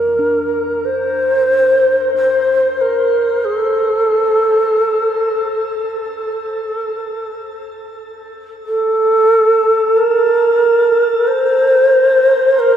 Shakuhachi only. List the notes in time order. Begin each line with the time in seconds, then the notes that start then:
Already playing: A#4
0.85 C5
2.16 C5
2.81 A#4
3.45 G#4
3.57 A4
8.66 A4
9.97 A#4
11.28 C5
12.59 A#4